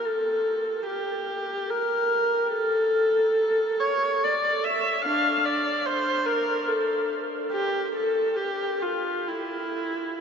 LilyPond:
\new Staff \with { instrumentName = "Viola" } { \time 3/4 \key a \phrygian \tempo 4 = 72 a'4 g'4 bes'4 | a'4. cis''8 d''8 e''8 | <d' f''>8 d''8 c''8 bes'8 a'8 r8 | g'8 a'8 g'8 f'8 e'4 | }